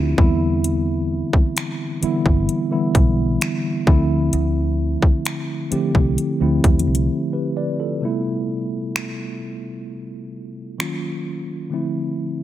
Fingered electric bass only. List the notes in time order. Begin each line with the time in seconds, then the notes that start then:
Already playing: D2
0.18 E2
1.33 muted fingered electric bass stroke
2.02 muted fingered electric bass stroke
2.26 G1
2.95 B1
3.87 D2
4.33 D2
5.03 muted fingered electric bass stroke
5.72 muted fingered electric bass stroke
5.95 C2
6.41 D2
6.64 E2
6.87 C2